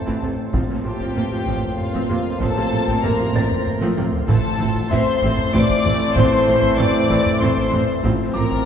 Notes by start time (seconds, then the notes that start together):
Already playing: A1 C3 A3 C4 A4 C5 A5
0.07 A2 E3 C4, taiko
0.22 A1 A2 C3 A3, taiko low-mid
0.53 A1 A2 F3 A#3 C4 F4 C5 C6, taiko
0.70 A2 C3 A#3
0.84 A1 A2 C3 F3 G4 G5 C6
1.00 A2 F3 C4, taiko
1.16 A1 A2 C3 A#3, taiko low-mid
1.31 A2 C3 F3
1.47 A1 A2 F3 C4, taiko
1.63 taiko low-mid
1.78 F4 F5, taiko low-mid
1.94 A2 F3 C4, taiko
2.09 A1 A2 C3 A#3, taiko low-mid
2.41 A1 A2 F3 C4 A4 A5, taiko
2.56 A2 C3 A#3
2.71 A1 A2 C3 F3
2.87 A2 F3 C4, taiko
3.03 A1 A2 C3 A#3 A#4 A#5, taiko low-mid
3.19 A2 C3 F3
3.34 A1 A2 F3 C4 C5 A6, taiko
3.51 taiko low-mid
3.66 taiko low-mid
3.81 A2 F3 C4, taiko high
3.97 A1 A2 C3 A#3, taiko high
4.12 taiko low
4.28 A1 A2 E3 A3 C4 E4 A4 C5 A5, taiko
4.59 A1 A2 E3 C4
4.75 taiko
4.91 A1 A2 E3 C4 C5 E5 C6, taiko low-mid
5.22 A1 A2 E3 C4, taiko
5.38 taiko low-mid
5.53 A1 A2 E3 C4 D5 D6, taiko low-mid
5.69 taiko
5.85 A1 A2 E3 C4, taiko low-mid
6.16 A1 A2 E3 C4 C5 C6, taiko
6.47 A1 A2 E3 C4
6.63 taiko
6.78 A1 A2 E3 C4 D5 D6, taiko low-mid
7.10 A1 A2 E3 C4, taiko
7.26 taiko low-mid
7.40 A1 A2 E3 C4 C5 C6, taiko low-mid
7.57 taiko
7.72 A1 A2 E3 C4, taiko low-mid
8.03 A1 A2 F3 C4 F4 C5 A#5, taiko
8.19 A2
8.26 A2
8.33 A1 A2 F3 C4 A#4 A#5 D6
8.41 A2
8.51 taiko
8.56 A2